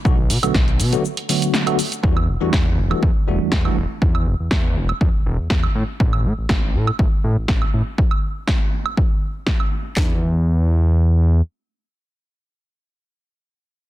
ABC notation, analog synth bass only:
X:1
M:4/4
L:1/16
Q:1/4=121
K:Em
V:1 name="Analog synth bass" clef=bass
B,,,2 B,, B,,, B,,,2 B,, z8 z | E,,2 E,,, E,, E,,2 E,,, z E,, z E,,, E,, E,, z E,,, z | E,,2 E,,, E,, E,,2 E,,, z E,, E,,, E,,, E,, E,, z A,, z | A,,,2 A,, A,,, A,,,2 A,, z A,,, z A,, A,,, A,,, z A,, z |
z16 | E,,12 z4 | z16 |]